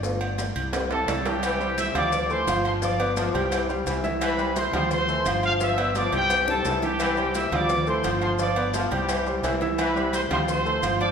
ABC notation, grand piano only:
X:1
M:4/4
L:1/8
Q:1/4=172
K:C
V:1 name="Grand piano"
d4 z4 | z [G,Gc]2 [F,Ff]2 [A,Ac] [F,Ff]2 | [F,Ff] [B,Bd]2 [G,Gc]2 [G,Gc]2 [E,Ee]- | [E,Ee] [G,Gc]2 [F,Ff]2 [A,Ac] [F,Ff]2 |
[F,Ff] [B,Bd]2 [G,Gc]2 [G,Gc]2 [E,Ee]- | [E,Ee] [G,Gc]2 [F,Ff]2 [A,Ac] [F,Ff]2 | [F,Ff] [B,Bd]2 [G,Gc]2 [G,Gc]2 [E,Ee]- | [E,Ee] [G,Gc]2 [F,Ff]2 [A,Ac] [F,Ff]2 |]
V:2 name="Grand piano"
[A,B,F] z3 [G,CE] z3 | z8 | z8 | z8 |
z8 | z8 | z8 | z8 |]